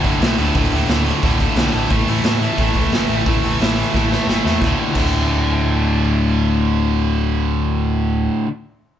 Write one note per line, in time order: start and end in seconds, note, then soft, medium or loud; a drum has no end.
0.04 0.14 F#1 medium
0.04 0.21 D2 medium
0.04 0.21 A2 medium
0.04 0.22 D3 medium
0.04 kick medium
0.04 open hi-hat medium
0.21 0.31 B1 loud
0.21 0.40 D2 medium
0.21 0.39 A2 loud
0.21 0.38 D3 medium
0.21 snare loud
0.21 open hi-hat medium
0.38 0.49 D1 medium
0.38 0.54 D2 medium
0.38 0.55 A2 medium
0.38 0.56 D3 medium
0.38 open hi-hat medium
0.55 0.65 D1 loud
0.55 0.74 D2 loud
0.55 0.73 A2 loud
0.55 0.73 D3 medium
0.55 kick loud
0.55 open hi-hat medium
0.72 0.82 D1 medium
0.72 0.88 D2 medium
0.72 0.89 A2 medium
0.72 0.89 D3 medium
0.72 open hi-hat medium
0.89 1.09 D1 medium
0.89 1.07 D2 medium
0.89 1.06 A2 medium
0.89 1.05 D3 loud
0.89 snare loud
0.89 open hi-hat medium
1.06 1.23 D2 medium
1.06 1.24 A2 medium
1.06 1.24 D3 medium
1.06 open hi-hat medium
1.23 1.44 D1 medium
1.23 1.41 D2 medium
1.23 1.40 A2 loud
1.23 1.39 D3 loud
1.23 kick loud
1.23 open hi-hat medium
1.40 1.56 D2 medium
1.40 1.57 A2 medium
1.40 1.57 D3 medium
1.40 kick medium
1.40 open hi-hat medium
1.56 1.66 B1 loud
1.56 1.74 D2 medium
1.56 1.73 A2 medium
1.56 1.73 D3 medium
1.56 snare loud
1.56 open hi-hat medium
1.74 1.84 A1 medium
1.74 1.90 D2 medium
1.74 1.89 A2 medium
1.74 1.90 D3 loud
1.74 open hi-hat medium
1.90 2.01 A1 loud
1.90 2.09 A2 medium
1.90 2.09 E3 medium
1.90 2.08 A3 loud
1.90 kick loud
1.90 open hi-hat medium
2.08 2.18 A1 medium
2.08 2.24 A2 medium
2.08 2.25 E3 medium
2.08 2.25 A3 loud
2.08 open hi-hat medium
2.24 2.42 A2 medium
2.24 2.45 A2 medium
2.24 2.41 E3 loud
2.24 2.41 A3 loud
2.24 snare loud
2.24 open hi-hat medium
2.41 2.58 A2 medium
2.41 2.59 E3 medium
2.41 2.60 A3 medium
2.41 open hi-hat medium
2.58 2.68 A1 medium
2.58 2.77 A2 loud
2.58 2.77 E3 loud
2.58 2.77 A3 loud
2.58 kick loud
2.58 open hi-hat medium
2.75 2.85 C#2 medium
2.75 2.93 E3 medium
2.75 2.95 A3 loud
2.75 kick medium
2.75 open hi-hat medium
2.79 2.93 A2 medium
2.92 3.02 G1 medium
2.92 3.10 A2 medium
2.92 3.09 E3 medium
2.92 3.09 A3 loud
2.92 snare loud
2.92 open hi-hat medium
3.09 3.20 A1 medium
3.09 3.27 A2 medium
3.09 3.27 E3 medium
3.09 3.28 A3 medium
3.09 open hi-hat medium
3.26 3.36 A1 medium
3.26 3.43 A2 medium
3.26 3.43 E3 medium
3.26 3.42 A3 medium
3.26 kick loud
3.26 open hi-hat medium
3.43 3.54 A1 medium
3.43 3.59 A2 medium
3.43 3.60 E3 medium
3.43 3.60 A3 medium
3.43 open hi-hat medium
3.60 3.80 A1 medium
3.60 3.78 A2 medium
3.60 3.77 E3 loud
3.60 3.76 A3 loud
3.60 snare loud
3.60 open hi-hat medium
3.78 3.93 A2 medium
3.78 3.94 E3 medium
3.78 3.94 A3 medium
3.78 open hi-hat medium
3.94 4.14 A1 medium
3.94 4.12 A2 medium
3.94 4.11 E3 loud
3.94 4.10 A3 loud
3.94 kick loud
3.94 snare medium
4.11 4.26 A2 medium
4.11 4.28 E3 medium
4.11 4.28 A3 medium
4.11 snare medium
4.27 4.38 G1 medium
4.27 4.45 A2 medium
4.27 4.44 E3 medium
4.27 4.43 A3 loud
4.27 snare medium
4.45 4.55 E2 medium
4.45 4.61 A2 medium
4.45 4.61 E3 medium
4.45 4.61 A3 medium
4.45 snare medium
4.62 4.71 D1 medium
4.62 4.94 D2 medium
4.62 4.97 A2 medium
4.62 4.99 D3 medium
4.62 kick loud
4.62 snare medium
4.95 8.27 D1 medium
4.95 8.45 D2 medium
4.95 8.47 A2 medium
4.95 kick loud
4.95 crash medium
4.99 8.49 D3 loud